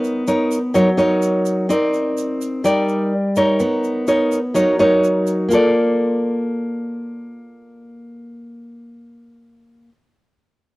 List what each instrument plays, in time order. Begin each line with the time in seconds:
Already playing: nylon-string guitar B3 D#4 A#4 C#5
0.04 shaker
0.27 nylon-string guitar D#4 A#4 C#5, shaker
0.51 shaker
0.74 nylon-string guitar F#3 D#4 A#4 C#5, shaker
0.97 nylon-string guitar D#4 A#4 C#5, shaker
1.22 shaker
1.46 shaker
1.69 nylon-string guitar C4 D#4 A#4 D5, shaker
1.94 shaker
2.18 shaker
2.42 shaker
2.64 nylon-string guitar G3 D#4 A#4 D5, shaker
2.89 shaker
3.36 nylon-string guitar D#4 A#4 C#5, shaker
3.60 nylon-string guitar B3, shaker
3.84 shaker
4.07 nylon-string guitar D#4 A#4 C#5, shaker
4.32 shaker
4.54 nylon-string guitar F#3 D#4 A#4 C#5, shaker
4.79 nylon-string guitar D#4 A#4 C#5, shaker
5.04 shaker
5.27 shaker
5.49 nylon-string guitar A#3 F4, shaker
5.53 nylon-string guitar A4 D5